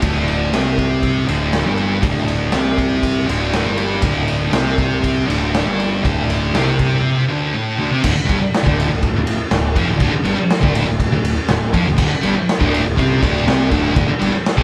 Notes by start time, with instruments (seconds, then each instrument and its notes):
0.02 picked electric bass D1, distorted electric guitar D2 D3, kick, ride
0.28 ride
0.52 picked electric bass C2, distorted electric guitar C3 C4, snare, ride
0.66 snare
0.78 kick, ride
1.03 kick, ride
1.28 picked electric bass D1, distorted electric guitar D2 D3, ride
1.53 snare, ride
1.65 picked electric bass G1, distorted electric guitar G2 G3
1.78 ride
2.03 picked electric bass D1, distorted electric guitar D2 D3, kick, ride
2.16 snare
2.28 ride
2.52 picked electric bass C2, distorted electric guitar C3 C4, snare, ride
2.78 kick, ride
3.03 kick, ride
3.27 picked electric bass D1, distorted electric guitar D2 D3, ride
3.53 snare, ride
3.64 picked electric bass G1, distorted electric guitar G2 G3
3.78 ride
4.02 picked electric bass D1, distorted electric guitar D2 D3, kick, ride
4.28 ride
4.52 picked electric bass C2, distorted electric guitar C3 C4, snare, ride
4.78 kick, ride
5.04 kick, ride
5.27 picked electric bass D1, distorted electric guitar D2 D3, ride
5.54 snare, ride
5.66 picked electric bass G1, distorted electric guitar G2 G3
5.80 ride
6.03 picked electric bass D1, distorted electric guitar D2 D3, kick, ride
6.30 ride
6.53 picked electric bass C2, distorted electric guitar C3 C4, snare, ride
6.67 snare
6.79 kick, ride
7.29 distorted electric guitar D2 D3
7.54 distorted electric guitar A2 A3
7.78 distorted electric guitar D2 D3
7.92 distorted electric guitar C3 C4
8.03 picked electric bass D1, distorted electric guitar D2 D3, kick, crash
8.14 muted distorted electric guitar stroke, muted picked electric bass stroke
8.25 distorted electric guitar G2 G3, ride
8.29 picked electric bass G1, kick
8.39 muted distorted electric guitar stroke, muted picked electric bass stroke
8.54 snare, ride
8.64 picked electric bass D1, distorted electric guitar D2 D3, kick
8.80 ride
8.89 picked electric bass D1, distorted electric guitar D2
9.03 kick, ride
9.16 picked electric bass D1, distorted electric guitar D2
9.27 ride
9.51 picked electric bass D1, distorted electric guitar D2, snare, ride
9.76 picked electric bass F1, distorted electric guitar F2 F3, kick, ride
9.88 picked electric bass D1, distorted electric guitar D2
10.00 picked electric bass D1, distorted electric guitar D2 D3, kick, ride
10.12 muted picked electric bass stroke, muted distorted electric guitar stroke
10.24 picked electric bass G1, distorted electric guitar G2 G3, ride
10.37 muted distorted electric guitar stroke, muted picked electric bass stroke
10.50 snare, ride
10.61 picked electric bass D1, distorted electric guitar D2 D3, kick
10.75 ride
10.87 picked electric bass D1, distorted electric guitar D2
11.00 kick, ride
11.12 picked electric bass D1, distorted electric guitar D2
11.25 ride
11.48 picked electric bass D1, distorted electric guitar D2, snare, ride
11.73 picked electric bass F1, distorted electric guitar F2 F3, kick, ride
11.86 picked electric bass D1, distorted electric guitar D2
11.97 picked electric bass D1, distorted electric guitar D2 D3, kick, crash
12.09 muted distorted electric guitar stroke, muted picked electric bass stroke
12.21 picked electric bass G1, distorted electric guitar G2 G3, ride
12.35 muted distorted electric guitar stroke, muted picked electric bass stroke
12.49 snare, ride
12.59 picked electric bass D1, distorted electric guitar D2 D3, kick
12.74 ride
12.85 picked electric bass D1, distorted electric guitar D2
12.97 picked electric bass C2, distorted electric guitar C3 C4, kick, ride
13.23 picked electric bass D1, distorted electric guitar D2 D3, kick, ride
13.47 picked electric bass C2, distorted electric guitar C3 C4, snare, ride
13.70 picked electric bass D1, distorted electric guitar D2 D3, kick, snare, ride
13.95 picked electric bass D1, distorted electric guitar D2 D3, kick, ride
14.08 muted picked electric bass stroke, muted distorted electric guitar stroke
14.19 picked electric bass G1, distorted electric guitar G2 G3, ride
14.33 muted distorted electric guitar stroke, muted picked electric bass stroke
14.46 snare, ride
14.57 picked electric bass D1, distorted electric guitar D2 D3, kick